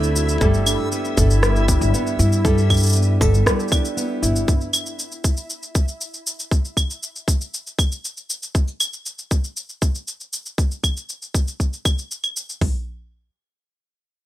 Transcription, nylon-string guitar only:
Already playing: D3 A3 C4 F#4 A4
0.16 F#4
0.41 G3 A4
0.66 D4
0.92 B3
1.17 A4
1.43 G3
1.68 D4
1.94 B3
2.19 E4
2.45 G3 A4
2.70 D4
2.95 B3
3.21 A4
3.46 G3
3.72 D4
3.97 B3
4.22 E4

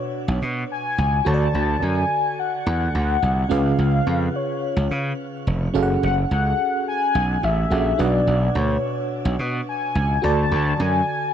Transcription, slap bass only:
0.28 B1
0.42 B2
0.98 C#2
1.26 D2
1.54 D2
1.82 F#2
2.67 E2
2.95 D2
3.22 C2
3.51 C#2
3.78 C#2
4.07 F2
4.77 C#2
4.91 C#3
5.47 F1
5.75 F#1
6.03 F#1
6.31 C#2
7.15 B1
7.43 A1
7.71 A#1
7.99 B1
8.27 B1
8.55 D2
9.25 B1
9.39 B2
9.95 C#2
10.23 D2
10.51 D2
10.80 F#2

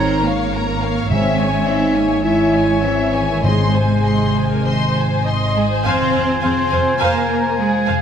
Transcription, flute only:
Already playing: A#5
1.11 G#5
2.23 G#5
3.43 G#5
5.56 G#5
5.85 C6
6.42 C6
6.99 A#5
7.57 G#5

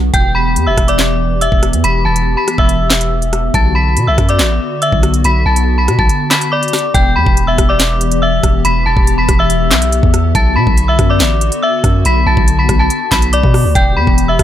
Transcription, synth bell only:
0.14 G5 G6
0.35 B5 B6
0.67 E5 E6
0.88 D5 D6
1.41 E5 E6
1.84 B5 B6
2.05 A5 A6
2.37 B5 B6
2.58 E5 E6
3.54 A5 A6
3.75 B5 B6
4.07 E5 E6
4.29 D5 D6
4.82 E5 E6
5.25 B5 B6
5.46 A5 A6
5.78 B5 B6
5.99 A5 A6
6.31 B5 B6
6.52 D5 D6
6.94 G5 G6
7.16 B5 B6
7.47 E5 E6
7.69 D5 D6
8.22 E5 E6
8.65 B5 B6
8.86 A5 A6
9.18 B5 B6
9.39 E5 E6
10.35 A5 A6
10.56 B5 B6
10.88 E5 E6
11.10 D5 D6
11.62 E5 E6
12.06 B5 B6
12.27 A5 A6
12.59 B5 B6
12.79 A5 A6
13.12 B5 B6
13.33 D5 D6
13.75 G5 G6
13.97 B5 B6
14.28 E5 E6

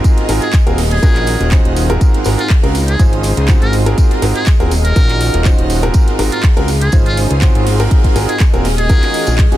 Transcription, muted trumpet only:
0.42 G#4
0.91 G#4
2.39 F4
2.88 G#4
3.62 A#4
4.36 G#4
4.85 A#4
6.32 F4
6.81 G#4
7.06 F4
8.29 G#4
8.78 G#4

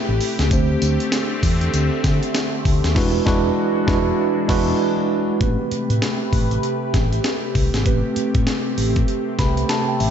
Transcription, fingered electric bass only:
0.09 A1
0.39 C#2
0.51 D2
0.82 D2
1.43 E2
1.74 D2
2.04 D3
2.65 D2
2.84 D#2
3.27 E1
3.88 E1
4.49 E1
5.41 A1
5.72 muted fingered electric bass stroke
5.90 A2
6.33 A1
6.94 A1
7.55 C2
7.74 G#1
7.86 A1
8.17 muted fingered electric bass stroke
8.35 A2
8.78 A1
9.39 C2
10.01 A1

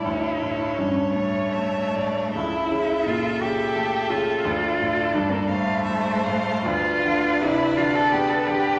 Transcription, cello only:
Already playing: E4
0.78 C#4
1.15 A3
2.36 E4
3.08 F4
3.42 G4
4.10 F4
5.14 D4
5.31 A#3
5.47 A3
6.66 F4
7.42 E4
7.77 F4
7.94 A4
8.11 G4
8.29 A4
8.47 G4

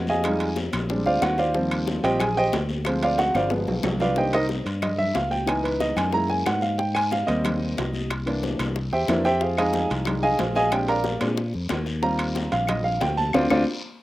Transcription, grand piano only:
0.10 G#4 D#5 F5 G#5
0.25 G3 G#3 D#4
0.90 G3 G#3 C4 D4
1.06 F4 C5 D5 F5
1.22 F#4 F#5
1.39 F4 C5 D5 F5
1.55 F3 G3 C4
2.03 F3 G3 C4 G4 C5 D#5 G5
2.20 G#4 G#5
2.37 G4 C5 D#5 G5
2.86 F3 G#3 C4
3.03 F4 C5 D5 F5
3.18 F#4 F#5
3.35 F4 C5 D5 F5
3.50 F3 G#3 B3
4.01 F4 B4 D5 F5
4.16 D#3 A#3 D4 G4 C5 D#5 G5
4.34 D#4 A#4 C5 D#5
4.83 D#5
4.98 E5
5.15 F5
5.31 G5
5.46 E3 B3 D#4 G#5
5.64 B4
5.80 D#5
5.97 G#5
6.13 G#3 A#3 E4 A#5
6.30 G#5
6.47 F#5
6.62 F5
6.79 G5
6.95 G#5
7.12 F5
7.26 G3 A#3 C4 D#5
8.26 E3 A#3 D4
8.93 G4 C5 E5 G5
9.08 E3 A#3 D4 E4 A#4 C5 E5
9.25 G4 C5 E5 G5
9.42 F4 G#4 C5 F5
9.58 F3 G#3 D#4 G#4 D#5 F5 G#5
10.07 G3 G#3 D#4
10.23 G#4 D#5 F5 G#5
10.40 F4 G#4 C5 F5
10.56 G#4 D#5 F5 G#5
10.71 G#3 C4 D4 G4 G5
10.89 A#4 D5 F5 A#5
11.21 G#3 C4 D4
12.02 G3 C4 F4 A#5
12.52 F5
12.69 D#5
12.84 F5
13.01 G5
13.17 A5
13.34 C4 D4 F4
13.51 C4 D4 F4

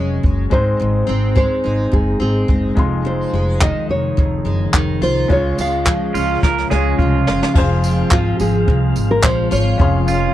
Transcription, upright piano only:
Already playing: G#3 C#4 F#4 C#5
0.50 G#3 C4 D#4
0.54 C5
2.75 G#3 D#4 F4
2.79 C6
5.28 G#3 C#4 F4 C#5
6.70 G#3 C#4 F4 C#5
7.54 F4 G#4
7.58 C5
9.78 C#4 F4 G#4 C6
9.82 F5

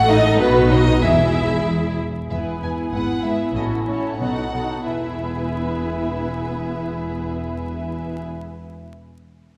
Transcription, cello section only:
Already playing: A2
0.39 B2
1.03 E2
2.31 E2
2.62 E2
2.93 G#2
3.24 G#2
3.54 A2
3.87 A2
4.21 B2
4.54 B2
4.87 E2

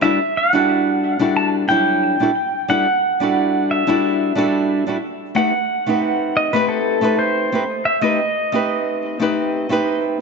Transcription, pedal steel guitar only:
0.02 E5
0.37 F#5
1.37 A5
1.69 G5
2.70 F#5
3.71 E5
5.36 F#5
6.37 D#5
6.53 B4
6.69 A4
7.19 C5
7.85 E5
8.02 D#5

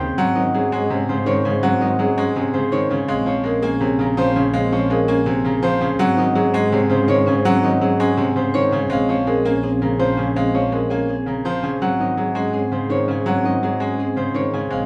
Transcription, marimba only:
0.00 C4
0.18 C4
0.55 G#4
0.72 C#4
0.91 C4
1.27 C5
1.46 C#4
1.63 C4
2.00 G#4
2.18 C#4
2.36 C4
2.72 C5
2.91 C#4
3.09 C4
3.45 A#4
3.63 C#4
3.81 C4
4.18 C5
4.36 C#4
4.54 C4
4.91 A#4
5.08 C#4
5.27 C4
5.63 C5
5.81 C#4
5.99 C4
6.35 G#4
6.54 C#4
6.72 C4
7.08 C5
7.27 C#4
7.45 C4
7.82 G#4
8.00 C#4
8.18 C4
8.54 C5
8.72 C#4
8.90 C4
9.27 A#4
9.45 C#4
9.63 C4
10.00 C5
10.17 C#4
10.36 C4
10.72 A#4
10.90 C#4
11.09 C4
11.45 C5
11.63 C#4
11.81 C4
12.18 G#4
12.36 C#4
12.54 C4
12.90 C5
13.09 C#4
13.27 C4
13.63 G#4
13.81 C#4
13.99 C4
14.36 C5
14.54 C#4
14.73 C4

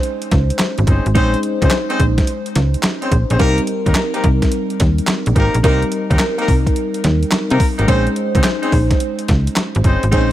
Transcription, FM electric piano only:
Already playing: G#3 C#4 D#4 C5
1.14 G#3 C#4 D#4 C5
3.39 G3 C4 D#4 A#4
5.63 G3 C4 D#4 A#4
7.87 G#3 C#4 D#4 C5
10.11 G#3 C4 D#4 C5
10.19 C#4

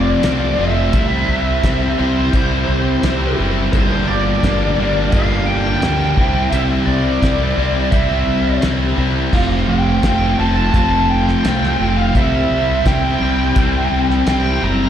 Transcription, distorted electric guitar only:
Already playing: F2 C3 F3 A3 C4 F4
0.23 F2 C3 F3 A3 C4 F4
0.57 F2 C3 F3 A3 C4 F4
0.94 C3 G3 C4 E4
1.64 C3 G3 C4 E4
1.98 C3 G3 C4 E4
2.33 C3 G3 C4 E4
3.03 C3 G3 C4 E4
3.38 C3 G3 C4 E4
3.72 G2 D3 G3 A#3 D4
4.41 G2 D3 G3 A#3 D4
4.77 G2 D3 G3 A#3 D4
5.13 G2 D3 G3 A#3 D4
5.82 G2 D3 G3 A#3 D4
6.16 C3 G3 C4 E4
6.52 C3 G3 C4 E4
7.22 C3 G3 C4 E4
7.57 C3 G3 C4 E4
7.92 C3 G3 C4 E4
8.62 C3 G3 C4 E4
8.97 C3 G3 C4 E4
9.32 F3 A3 C4 F4
10.03 F3 A3 C4 F4
10.39 F3 A3 C4 F4
10.74 F3 A3 C4 F4
11.45 F3 A3 C4 F4
11.80 F3 A3 C4 F4
12.15 C3 G3 C4 E4
12.87 C3 G3 C4 E4
13.22 C3 G3 C4 E4
13.57 C3 G3 C4 E4
14.28 C3 G3 C4 E4
14.62 C3 G3 C4 E4

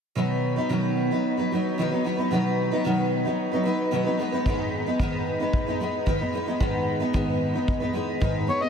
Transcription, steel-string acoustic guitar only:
0.15 B2 D#3 F#3 B3 D#4 B4
0.56 F#3 B3 D#4 B4
0.69 B2 D#3 F#3 B3 D#4 B4
1.11 F#3 B3 D#4 B4
1.37 F#3 B3 D#4 B4
1.51 F#3 B3 D#4 B4
1.78 B2 D#3 F#3 B3 D#4 B4
1.91 F#3 B3 D#4 B4
2.04 F#3 B3 D#4 B4
2.17 F#3 B3 D#4 B4
2.31 B2 D#3 F#3 B3 D#4 B4
2.71 F#3 B3 D#4 B4
2.84 B2 D#3 F#3 B3 D#4 B4
3.25 F#3 B3 D#4 B4
3.52 F#3 B3 D#4 B4
3.64 F#3 B3 D#4 B4
3.91 B2 D#3 F#3 B3 D#4 B4
4.04 F#3 B3 D#4 B4
4.18 G#3 B3 D#4 B4
4.32 G#3 B3 D#4 B4
4.46 G#2 D#3 G#3 B3 D#4 B4
4.86 G#3 B3 D#4 B4
5.00 G#2 D#3 G#3 B3 D#4 B4
5.40 G#3 B3 D#4 B4
5.67 G#3 B3 D#4 B4
5.80 G#3 B3 D#4 B4
6.06 G#2 D#3 G#3 B3 D#4 B4
6.20 G#3 B3 D#4 B4
6.33 G#3 B3 D#4 B4
6.46 G#3 B3 D#4 B4
6.60 G#2 D#3 G#3 B3 D#4 B4
7.00 G#3 B3 D#4 B4
7.13 G#2 D#3 G#3 B3 D#4 B4
7.54 G#3 B3 D#4 B4
7.80 G#3 B3 D#4 B4
7.93 G#3 B3 D#4 B4
8.20 G#2 D#3 G#3 B3 D#4 B4
8.47 G#3 B3 D#4 B4
8.60 G#3 B3 D#4 B4

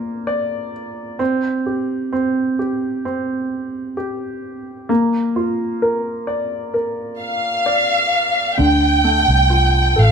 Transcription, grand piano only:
Already playing: A#3 F4 D5
0.27 D5
1.19 C4
1.66 G4
2.13 C4
2.59 G4
3.05 C4
3.97 G4
4.89 A#3
5.36 F4
5.82 A#4
6.27 D5
6.74 A#4
7.66 D5
8.58 D3
9.04 A3
9.50 F4
9.96 A4

